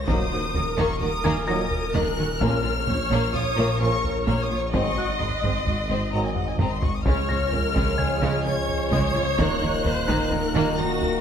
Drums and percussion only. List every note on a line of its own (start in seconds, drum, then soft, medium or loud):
0.08 taiko medium
0.54 taiko low medium
0.78 taiko medium
1.01 taiko low medium
1.71 taiko low soft
1.95 taiko medium
2.41 taiko loud
2.87 taiko low medium
3.11 taiko medium
3.34 taiko low medium
4.04 taiko low medium
4.27 taiko medium
4.74 taiko loud
5.20 taiko low medium
5.44 taiko medium
5.67 taiko low medium
6.36 taiko low-mid medium
6.59 taiko low-mid loud
6.82 taiko low loud
7.06 taiko loud
7.52 taiko low medium
7.76 taiko medium
7.99 taiko low medium
8.69 taiko low medium
8.92 taiko medium
9.38 taiko loud
9.85 taiko low medium
10.08 taiko medium
10.31 taiko low medium
11.01 taiko low soft